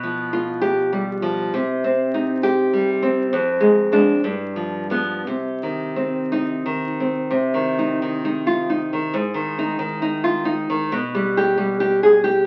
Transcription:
Already playing: B2
0.03 F3
0.33 F4
0.62 G4
0.93 G3
1.22 F3
1.54 C3
1.84 C4
2.14 D#4
2.43 G4
2.73 G3
3.03 C4
3.33 F2
3.60 G#3
3.92 G#3 D4
4.24 G2
4.56 F3
4.90 F3 B3
5.27 C3
5.63 D#3
5.96 C4
6.32 D#4
6.66 D#3
7.00 C4
7.31 C3
7.54 D#3
7.79 D#4
8.02 D#3
8.25 D#4
8.47 F4
8.70 D#4
8.93 D#3
9.14 G#2
9.34 D#3
9.59 D#4
9.79 D#3
10.02 D#4
10.24 F4
10.45 D#4
10.70 D#3
10.92 B2
11.15 G3
11.37 G4
11.58 G3
11.80 G4
12.03 G#4
12.24 G4

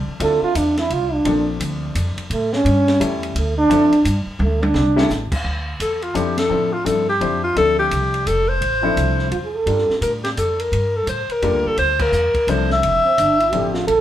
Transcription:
Already playing: F3 C4 D4 E4 A4
0.07 muted upright bass stroke
0.20 D2 C4 D4 E4 F4 A4, kick, ride
0.42 F4, muted upright bass stroke
0.55 E2 D4, kick, hi-hat pedal, ride
0.77 E4, snare, ride
0.90 C2 F4, kick, ride
1.13 D4
1.25 A#1 F3 A#3 C4 D4 A4, kick, ride
1.60 D2, kick, hi-hat pedal, ride
1.95 F2, kick, hi-hat pedal, ride
2.17 muted upright bass stroke, ride
2.30 A2 A3, kick, ride
2.53 C#4, snare
2.65 G2, kick, ride
2.88 snare, ride
3.00 E2 G3 A3 C#4 E4 A4, kick, hi-hat pedal, ride
3.23 ride
3.35 D2 A3, kick, ride
3.58 D4
3.70 F2 F3 C4 D4 E4 A4, kick, hi-hat pedal, ride
3.91 muted upright bass stroke, ride
4.05 G2, kick, hi-hat pedal, ride
4.26 muted upright bass stroke
4.39 D2 A3, high tom
4.63 D4, high tom
4.74 C2, snare
4.96 G3 A3 C#4 E4 A4, snare
5.10 A1, snare, hi-hat pedal
5.31 muted upright bass stroke, kick, crash
5.44 D2, kick
5.80 E2 A4, kick, hi-hat pedal, ride
6.02 F4, ride
6.14 F2 F3 C4 D4 E4 G4 A4, kick, hi-hat pedal, ride
6.37 A4, snare, ride
6.50 A2 F3 C4 D4 E4 A4
6.73 F4
6.84 G2 F3 C4 D4 E4 A4, kick, hi-hat pedal, ride
7.09 G4
7.21 F2 F3 C4 D4 E4 C5, kick, ride
7.44 F4
7.56 D2 F3 C4 D4 E4 A4, kick, ride
7.79 G4
7.91 C2, kick, hi-hat pedal, ride
8.14 ride
8.26 F1 A4, kick, hi-hat pedal, ride
8.49 C5
8.61 A1, kick, ride
8.83 F3 C4 D4 E4 A4
8.96 C2, kick, hi-hat pedal, ride
9.19 snare
9.31 E2 F4, kick, ride
9.45 G#4
9.55 A4
9.66 G2 G3 D4 F4 A4 A#4, kick, ride
9.78 snare
9.90 muted upright bass stroke, snare
10.01 A2 A#4, kick, hi-hat pedal, ride
10.24 G4, snare, ride
10.37 F2 A4, kick, hi-hat pedal, ride
10.59 A#4, ride
10.72 G2, kick, ride
10.97 A4
11.07 A2 C5, kick, hi-hat pedal, ride
11.28 A#4, muted upright bass stroke, ride
11.42 F2 G3 A#3 D4 F4 A4, kick, ride
11.53 D2
11.65 A#1 A4
11.77 D2 C5, kick, ride
11.99 A#4, kick, crash
12.12 E2, hi-hat pedal
12.34 muted upright bass stroke, kick, ride
12.47 C2 F3 C4 D4 E4 A4 C5, kick, hi-hat pedal, ride
12.70 E5, snare
12.83 F1, kick, ride
13.05 C4, muted upright bass stroke
13.18 G1 D4, kick, hi-hat pedal, ride
13.40 E4, ride
13.52 A1 F3 C4 D4 E4 G4 A4, kick, ride
13.74 F4, snare
13.87 A#1 A4, kick, ride

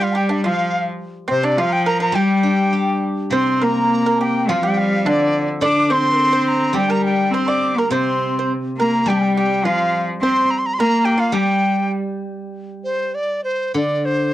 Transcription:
Already playing: G3
0.00 F4 F5
0.13 G4 A#5
0.17 G5
0.29 D4 D5
0.44 F3 F4 F5
1.28 C3 C4 C5
1.43 D4 D5
1.57 F3 F4 F5
1.68 A#5
1.72 G5
1.86 A#4 A#5
2.00 A#4 A#5
2.12 G3 G4 G5
2.43 D4
2.73 G4
3.31 C3 C4 C5 C6
3.56 C6
3.61 A#3 A#4 A#5
4.06 A#4
4.21 G4 G5
4.49 F3 F4 F5
4.63 G3 G4 G5
4.78 F5
5.06 D3 D4 D5
5.61 D3 D4 D5 D6
5.89 C4 C5 C6
6.15 A#4
6.33 C5 C6
6.41 C6
6.48 A#5
6.73 G3 G4 G5
6.77 G5
6.88 A#4 A#5
7.03 G5
7.31 C4 C5 C6
7.48 D5 D6
7.76 A#3 A#4 A#5
7.90 C3 C4 C5 C6
7.95 C6
8.39 C5
8.78 A#3 A#4 A#5
9.06 G3 G5
9.10 G4
9.36 G4 G5
9.64 F3 F4 F5
10.21 C4 C5 C6
10.51 A#5
10.58 C6
10.66 A#5
10.74 C6
10.79 A#3 A#4 A#5
11.05 G4 G5
11.18 F4 F5
11.32 G3 G4 G5
12.84 C5
13.15 D5
13.44 C5
13.74 D3 D5
14.05 C5

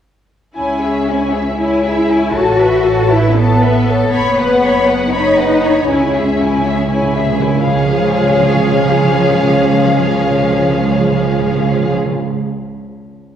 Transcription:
0.57 C#2 C#4 E4 C#5 G#5
0.83 G#4 E5
1.08 E4 C#5 G#5
1.33 G#4 E5
1.59 E4 C#5 G#5
1.85 G#4 E5
2.10 E4 C#5 G#5
2.34 A1 F#4 A4 C#5 A5
2.59 A4 B4 E5
2.84 A4 C#5 A5
3.10 E4 A4 B4 E5
3.37 B3 A4 C#5 A5
3.62 A4 B4 E5
3.87 A4 C#5 A5
4.12 F#1 B3 C#5 B5
4.38 B4 F#5
4.63 C#5 B5
4.88 B4 F#5
5.13 D#4 C#5 B5
5.38 B4 F#5
5.64 C#5 B5
5.89 C#2 C#3 C#4 E4 C#5 G#5
5.97 C#3
6.03 C#3
6.15 C#3 G#4 E5
6.26 C#3
6.34 C#3
6.41 C#3 E4 C#5 G#5
6.57 C#3
6.65 C#3 G#4 E5
6.73 C#3
6.80 C#3
6.87 C#3 G#5
6.92 C#3 E4 C#5
7.03 C#3
7.11 C#3
7.16 C#3 G#4 E5
7.25 C#3
7.32 C#3
7.38 C#3 E4 C#5 G#5
7.46 C#3
7.54 C#3
7.65 C#2 C#3 F3 C#4 G#4 C#5 F5
7.74 C#3
7.80 C#3
7.86 C#3
7.92 C#3
7.99 C#3
8.05 C#3
8.12 C#3
8.17 C#3
8.23 C#3
8.30 C#3
8.36 C#3
8.43 C#3
8.49 C#3
8.55 C#3
8.62 C#3
8.67 C#3
8.74 C#3
8.80 C#3
8.85 C#3
8.91 C#3
8.98 C#3
9.04 C#3
9.10 C#3
9.17 C#3
9.24 C#3
9.31 C#3
9.38 C#3
9.44 C#3
9.50 C#3
9.57 C#3
9.63 C#3
9.69 C#3
9.74 C#3
9.81 C#3
9.87 C#3
9.93 C#3
10.00 C#3
10.06 C#3
10.13 C#3
10.19 C#3
10.25 C#3
10.31 C#3
10.37 C#3
10.43 C#3
10.50 C#3
10.56 C#3
10.62 C#3
10.68 C#3
10.74 C#3
10.81 C#3
10.87 C#3
10.93 C#3
10.99 C#3
11.05 C#3
11.11 C#3
11.17 C#3
11.23 C#3
11.30 C#3
11.36 C#3
11.42 C#3
11.49 C#3
11.55 C#3
11.62 C#3
11.68 C#3
11.75 C#3
11.81 C#3
11.87 C#3
11.93 C#3
11.99 C#3
12.05 C#3
12.12 C#3

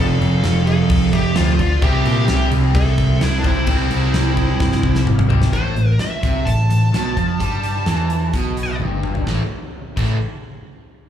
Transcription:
Already playing: F2 C3 F3 F5
0.00 F1 A4
0.21 F1, crash
0.44 F1, snare, crash
0.67 A4 F5, crash
0.90 C2, kick, crash
1.13 F1 G4 E5, kick, crash
1.36 D2 F2 C3 F3 F4 C5, snare, crash
1.59 F4 D5, kick, crash
1.82 C2 C3 G3 C4 G4 E5, kick, crash
2.05 A#2, crash
2.28 C2, snare, crash
2.51 C2, crash
2.75 C2 A4 E5, kick, crash
2.98 kick, crash
3.21 C2 E4 C5, snare, crash
3.39 D4 A#4
3.43 C2 G3 C4 E4 C5, kick, crash
3.47 C3
3.66 C2 C3 G3 C4, kick, crash
3.90 C2, crash
4.14 C2, snare, crash
4.37 kick, crash
4.60 G2, kick, snare
4.72 snare
4.83 C2, kick
4.95 snare
5.07 G#1, mid tom
5.19 mid tom
5.29 C3 G3 C4, floor tom
5.42 snare
5.53 A1 A2 C5, kick, closed hi-hat
5.76 A1 A2, closed hi-hat
5.99 E5, muted picked electric bass stroke, muted overdriven electric guitar stroke, snare, closed hi-hat
6.23 C2 C3, kick, closed hi-hat
6.45 A1 A2 A5, kick, closed hi-hat
6.69 A1 A2, closed hi-hat
6.93 B1 B2, snare, closed hi-hat
7.17 F2 F3, kick, closed hi-hat
7.40 G2 G3, kick, closed hi-hat
7.63 closed hi-hat
7.86 E2 E3, snare, closed hi-hat
8.10 closed hi-hat
8.33 B1 B2, kick, closed hi-hat
8.57 closed hi-hat
8.80 G1 G2, high tom
9.03 mid tom
9.15 floor tom
9.27 A1 A2 E3 A3, kick, snare
9.96 A1 A2 E3 A3, kick, crash

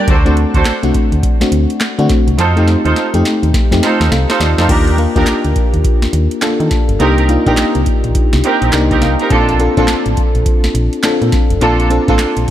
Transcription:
Already playing: G4 A#4 D5
0.07 D2 D4 F#4 A4 C5, kick, closed hi-hat
0.25 A3 C4 D4 F#4, closed hi-hat
0.37 closed hi-hat
0.54 D2 D4 F#4 A4 C5, kick, closed hi-hat
0.65 snare, clap, closed hi-hat
0.83 C2 A3 C4 D4 F#4, closed hi-hat
0.94 kick, closed hi-hat
1.12 D2, closed hi-hat
1.23 kick, closed hi-hat
1.41 D2 A3 C4 D4 F#4, snare, closed hi-hat
1.52 D2, closed hi-hat
1.70 closed hi-hat
1.81 snare, clap, closed hi-hat
1.98 D3 A3 C4 D4 F#4, closed hi-hat
2.09 kick, snare, closed hi-hat
2.27 C2, closed hi-hat
2.38 F2 D#4 F4 A4 C5, snare, closed hi-hat
2.56 A3 C4 D#4 G4, closed hi-hat
2.68 snare, closed hi-hat
2.85 D#2 D#4 F4 A4 C5, closed hi-hat
2.96 snare, closed hi-hat
3.14 F2 A3 C4 D#4 G4, closed hi-hat
3.25 snare, closed hi-hat
3.43 D#2, closed hi-hat
3.54 kick, snare, closed hi-hat
3.71 F2 A3 C4 D#4 G4, snare, closed hi-hat
3.82 D#4 F4 A4 C5, snare, closed hi-hat
4.01 D#2, snare, closed hi-hat
4.11 C2 A4 F5, snare, closed hi-hat
4.29 D#4 F4 A4 C5, snare, closed hi-hat
4.40 D#2 F4 D5, snare, closed hi-hat
4.58 F2 D#4 F4 A4 C5, snare, closed hi-hat
4.69 D#2 A#3 D4 D#4 F4 G4 A#4, kick, closed hi-hat, crash
4.88 closed hi-hat
4.98 A#3 D4 F4 A#4, closed hi-hat
5.16 D#2 A#3 D4 D#4 F4 G4 A#4, kick, closed hi-hat
5.27 snare, clap, closed hi-hat
5.44 D2, closed hi-hat
5.56 kick, closed hi-hat
5.74 D#2, closed hi-hat
5.84 kick, closed hi-hat
6.02 D#2, snare, closed hi-hat
6.13 D#2, closed hi-hat
6.31 closed hi-hat
6.42 A#3 D4 F4 A4, snare, clap, closed hi-hat
6.60 D#3, closed hi-hat
6.71 kick, snare, closed hi-hat
6.89 G1, closed hi-hat
7.00 C2 A#3 C4 D4 D#4 G4 A#4, closed hi-hat
7.18 closed hi-hat
7.28 A#3 D4 D#4 F4, closed hi-hat
7.46 A#1 A#3 C4 D4 D#4 G4 A#4, kick, closed hi-hat
7.57 snare, clap, closed hi-hat
7.75 C2, closed hi-hat
7.86 kick, closed hi-hat
8.04 A#1, closed hi-hat
8.15 kick, closed hi-hat
8.33 C2, snare, closed hi-hat
8.44 C4 D#4 G4 A#4, closed hi-hat
8.62 A#1, closed hi-hat
8.73 C2 A#3 D4 D#4 G4 A#5, snare, clap, closed hi-hat
8.91 C4 D#4 G4 A#4, kick, closed hi-hat
9.01 C2 F5, snare, closed hi-hat
9.19 C4 D#4 G4 A#4, closed hi-hat
9.30 A#1 A#3 C4 D4 F4 A4, kick, closed hi-hat
9.49 closed hi-hat
9.59 C4 D4 F4 A4, closed hi-hat
9.77 A#1 A#3 C4 D4 F4 A4, kick, closed hi-hat
9.88 snare, clap, closed hi-hat
10.06 A1, closed hi-hat
10.17 kick, closed hi-hat
10.35 A#1, closed hi-hat
10.46 kick, closed hi-hat
10.64 A#1, snare, closed hi-hat
10.75 A#1, closed hi-hat
10.93 closed hi-hat
11.04 C4 D4 F4 A4, snare, clap, closed hi-hat
11.22 A#2, closed hi-hat
11.32 kick, snare, closed hi-hat
11.50 F1, closed hi-hat
11.61 A#1 A#3 C4 D4 F4 A4, closed hi-hat
11.80 closed hi-hat
11.90 C4 D4 F4 A4, closed hi-hat
12.08 A1 A#3 C4 D4 F4 A4, kick, closed hi-hat
12.19 snare, clap, closed hi-hat
12.37 A#1, closed hi-hat

